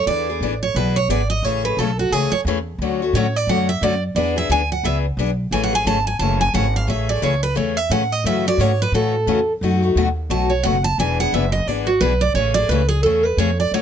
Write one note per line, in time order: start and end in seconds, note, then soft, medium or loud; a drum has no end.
0.06 0.40 E2 medium
0.06 0.27 E3 medium
0.06 0.27 B3 medium
0.06 0.27 D4 medium
0.06 0.27 G#4 medium
0.06 0.58 D5 loud
0.29 0.41 B3 soft
0.29 0.42 D4 medium
0.29 0.42 G#4 medium
0.41 0.74 A1 medium
0.41 0.53 E3 medium
0.41 0.53 B3 medium
0.41 0.53 D4 medium
0.41 0.53 G#4 medium
0.63 0.76 C#5 medium
0.75 1.08 B1 medium
0.75 0.96 E3 medium
0.75 0.97 B3 medium
0.75 0.97 D4 medium
0.75 0.97 G#4 medium
0.75 0.96 B4 medium
0.96 1.09 C#5 medium
1.09 1.42 G#1 medium
1.09 1.20 E3 medium
1.09 1.21 B3 medium
1.09 1.21 D4 medium
1.09 1.21 G#4 medium
1.09 1.29 D5 medium
1.30 1.44 D#5 medium
1.43 1.76 A1 medium
1.43 1.64 C#3 medium
1.43 1.64 E3 medium
1.43 1.64 A3 medium
1.43 1.64 C#4 medium
1.43 1.64 G#4 medium
1.43 1.64 C#5 medium
1.65 1.78 A3 soft
1.65 1.78 C#4 soft
1.65 1.78 G#4 medium
1.65 1.78 B4 medium
1.77 2.10 B1 medium
1.77 1.89 C#3 medium
1.77 1.89 E3 medium
1.77 1.89 A3 medium
1.77 1.90 C#4 medium
1.77 1.90 G#4 medium
1.77 1.98 A4 medium
1.99 2.12 F#4 medium
2.11 2.30 C#2 medium
2.11 2.33 C#3 medium
2.11 2.33 E3 medium
2.11 2.33 A3 medium
2.11 2.33 C#4 medium
2.11 2.32 G#4 medium
2.15 2.34 G#4 medium
2.31 2.40 C#5 loud
2.31 muted upright bass stroke soft
2.45 2.78 E2 medium
2.45 2.57 C#3 medium
2.45 2.58 E3 medium
2.45 2.58 A3 medium
2.45 2.58 C#4 medium
2.45 2.58 G#4 medium
2.78 3.12 D2 medium
2.78 3.00 D3 medium
2.78 3.00 F#3 medium
2.78 3.01 A3 medium
2.78 3.01 C#4 medium
2.78 3.01 F#4 medium
3.02 3.15 A3 soft
3.02 3.15 C#4 medium
3.02 3.14 F#4 medium
3.13 3.46 A2 medium
3.13 3.26 D3 medium
3.13 3.26 F#3 medium
3.13 3.26 A3 medium
3.13 3.26 C#4 medium
3.13 3.26 F#4 medium
3.13 3.36 C#5 medium
3.36 3.49 D5 medium
3.47 3.80 F#2 medium
3.47 3.69 D3 medium
3.47 3.69 F#3 medium
3.47 3.69 A3 medium
3.47 3.69 C#4 medium
3.47 3.70 F#4 medium
3.47 3.68 F#5 medium
3.69 3.82 E5 loud
3.81 4.14 F#2 medium
3.81 3.93 D3 medium
3.81 3.94 F#3 medium
3.81 3.93 A3 medium
3.81 3.94 C#4 medium
3.81 3.94 F#4 medium
3.81 4.02 D5 medium
4.15 4.48 E2 medium
4.15 4.36 E3 medium
4.15 4.36 B3 medium
4.15 4.36 D4 medium
4.15 4.35 G#4 medium
4.15 4.36 D5 medium
4.36 4.49 B3 soft
4.36 4.49 D4 medium
4.36 4.49 G#4 medium
4.36 4.50 E5 medium
4.49 4.83 D2 medium
4.49 4.61 E3 medium
4.49 4.61 B3 medium
4.49 4.61 D4 medium
4.49 4.61 G#4 medium
4.49 4.71 G#5 loud
4.72 4.84 F#5 loud
4.83 5.16 C#2 medium
4.83 5.05 E3 medium
4.83 5.05 B3 medium
4.83 5.05 D4 medium
4.83 5.05 G#4 medium
4.83 4.97 E5 loud
5.17 5.51 B1 medium
5.17 5.29 E3 medium
5.17 5.30 B3 medium
5.17 5.30 D4 loud
5.17 5.30 G#4 loud
5.51 5.84 A1 medium
5.51 5.72 C#3 medium
5.51 5.72 E3 medium
5.51 5.72 A3 medium
5.51 5.72 C#4 medium
5.51 5.72 G#4 medium
5.51 5.63 G#5 medium
5.63 5.75 F#5 medium
5.73 5.85 A3 soft
5.73 5.86 C#4 medium
5.73 5.86 G#4 medium
5.73 5.86 G#5 loud
5.85 6.19 G#1 medium
5.85 5.97 C#3 medium
5.85 5.97 E3 medium
5.85 5.97 A3 medium
5.85 5.97 C#4 loud
5.85 5.98 G#4 loud
5.85 6.07 A5 loud
6.07 6.19 G#5 loud
6.19 6.53 F#1 medium
6.19 6.41 C#3 medium
6.19 6.41 E3 medium
6.19 6.41 A3 medium
6.19 6.41 C#4 medium
6.19 6.41 G#4 medium
6.19 6.40 A5 loud
6.41 6.54 G#5 loud
6.54 6.87 G#1 medium
6.54 6.65 C#3 medium
6.54 6.65 E3 medium
6.54 6.65 A3 medium
6.54 6.65 C#4 medium
6.54 6.66 G#4 loud
6.54 6.74 F#5 loud
6.76 6.89 F5 medium
6.87 7.21 A1 medium
6.87 7.08 C#3 medium
6.87 7.08 E3 medium
6.87 7.08 A3 medium
6.87 7.08 C#4 medium
6.87 7.08 G#4 medium
6.87 7.09 E5 medium
7.09 7.21 A3 soft
7.09 7.21 C#4 soft
7.09 7.22 G#4 soft
7.09 7.22 D5 medium
7.22 7.55 C#2 medium
7.22 7.33 C#3 medium
7.22 7.33 E3 medium
7.22 7.33 A3 medium
7.22 7.33 C#4 medium
7.22 7.34 G#4 medium
7.22 7.43 C#5 medium
7.43 7.56 B4 medium
7.55 7.89 E2 medium
7.55 7.76 C#3 medium
7.55 7.77 E3 medium
7.55 7.77 A3 medium
7.55 7.77 C#4 medium
7.55 7.77 G#4 medium
7.55 7.77 C#5 medium
7.77 7.90 E5 medium
7.90 8.24 A2 medium
7.90 8.02 C#3 medium
7.90 8.02 E3 medium
7.90 8.02 A3 medium
7.90 8.02 C#4 medium
7.90 8.02 G#4 medium
7.90 8.12 F#5 loud
8.12 8.25 D#5 medium
8.24 8.57 F#2 medium
8.24 8.45 C#3 medium
8.24 8.45 E3 medium
8.24 8.45 A3 medium
8.24 8.45 C#4 medium
8.24 8.45 F#4 medium
8.24 8.46 E5 loud
8.47 8.59 A3 soft
8.47 8.59 C#4 soft
8.47 8.59 F#4 medium
8.47 8.61 D5 loud
8.58 8.91 G#2 medium
8.58 8.70 C#3 medium
8.58 8.70 E3 medium
8.58 8.71 A3 medium
8.58 8.70 C#4 medium
8.58 8.71 F#4 loud
8.58 8.80 C#5 medium
8.82 8.94 B4 medium
8.92 9.26 A2 medium
8.92 9.14 C#3 medium
8.92 9.14 E3 medium
8.92 9.14 A3 medium
8.92 9.14 C#4 medium
8.92 9.14 F#4 medium
8.92 9.52 A4 medium
9.26 9.60 E2 medium
9.26 9.38 C#3 medium
9.26 9.38 E3 medium
9.26 9.39 A3 medium
9.26 9.39 C#4 medium
9.26 9.39 F#4 medium
9.61 9.95 F#2 medium
9.61 9.82 B2 medium
9.61 9.82 F#3 medium
9.61 9.82 A3 medium
9.61 9.82 D#4 medium
9.61 9.81 F#4 medium
9.83 9.96 A3 soft
9.83 9.96 D#4 medium
9.83 9.96 F#4 medium
9.95 10.29 D#2 medium
9.95 10.07 B2 medium
9.95 10.07 F#3 medium
9.95 10.07 A3 medium
9.95 10.07 D#4 medium
9.95 10.08 F#4 loud
10.30 10.63 B1 medium
10.30 10.50 B2 medium
10.30 10.50 F#3 medium
10.30 10.51 A3 medium
10.30 10.51 D#4 medium
10.30 10.51 F#4 medium
10.30 10.50 A5 medium
10.50 10.63 C#5 medium
10.63 10.97 F#1 medium
10.63 10.75 B2 medium
10.63 10.75 F#3 medium
10.63 10.75 A3 medium
10.63 10.75 D#4 loud
10.63 10.76 F#4 loud
10.63 10.84 F#5 loud
10.84 10.98 A5 loud
10.98 11.31 E1 medium
10.98 11.18 E3 medium
10.98 11.19 B3 medium
10.98 11.19 D4 medium
10.98 11.19 G#4 medium
10.98 11.19 G#5 medium
11.20 11.33 B3 soft
11.20 11.33 D4 soft
11.20 11.33 G#4 medium
11.20 11.33 F#5 loud
11.33 11.66 F#1 medium
11.33 11.44 E3 medium
11.33 11.44 B3 medium
11.33 11.44 D4 medium
11.33 11.44 G#4 medium
11.33 11.52 E5 medium
11.52 11.68 D#5 medium
11.66 12.00 G#1 medium
11.66 11.88 E3 medium
11.66 11.88 B3 medium
11.66 11.88 D4 medium
11.66 11.88 G#4 medium
11.66 11.87 D5 medium
11.87 12.00 F#4 medium
12.01 12.34 B1 medium
12.01 12.12 E3 medium
12.01 12.12 B3 medium
12.01 12.12 D4 medium
12.01 12.12 G#4 medium
12.01 12.21 B4 medium
12.21 12.34 D5 medium
12.34 12.68 A1 medium
12.34 12.56 C#3 medium
12.34 12.56 E3 medium
12.34 12.56 A3 medium
12.34 12.56 C#4 medium
12.34 12.55 G#4 medium
12.34 12.54 C#5 medium
12.54 12.70 A3 soft
12.54 12.70 C#4 soft
12.54 12.69 G#4 soft
12.54 12.68 D5 loud
12.69 13.02 C#2 medium
12.69 12.81 C#3 loud
12.69 12.81 E3 medium
12.69 12.81 A3 medium
12.69 12.81 C#4 medium
12.69 12.81 G#4 loud
12.69 12.88 B4 medium
12.89 13.02 G#4 medium
13.03 13.25 C#3 medium
13.03 13.25 E3 medium
13.03 13.25 A3 medium
13.03 13.25 C#4 medium
13.03 13.25 G#4 medium
13.03 13.25 A4 medium
13.25 13.38 B4 medium
13.37 13.70 F2 medium
13.37 13.49 C#3 medium
13.37 13.49 E3 medium
13.37 13.49 A3 medium
13.37 13.50 C#4 medium
13.37 13.50 G#4 medium
13.37 13.58 C#5 medium
13.60 13.72 D5 medium
13.71 13.82 F#2 medium
13.71 13.82 D3 medium
13.71 13.82 F#3 medium
13.71 13.82 A3 medium
13.71 13.82 C#4 medium
13.71 13.82 F#4 medium
13.71 13.82 C#5 medium